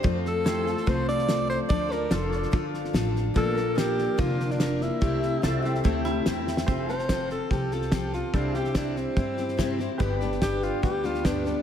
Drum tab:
HH |----p-------p---|----p-------p---|----p-------p---|----p-------p---|
SD |o-o-o-ooo-ooo-o-|o-o-o-ooo-ooo-o-|o-o-o-o-o-ooo-o-|o-o-o-ooo-o-o-oo|
BD |o-------o-------|o-------o-------|o-------o-------|o-------o-------|

HH |----p-------p---|----p-------p---|----p-------p---|
SD |o-ooo-o-o-ooo-o-|o-ooo-o-o-ooo-o-|o-ooo-o-o-ooo-o-|
BD |o---o---o---o---|o---o---o---o---|o---o---o---o---|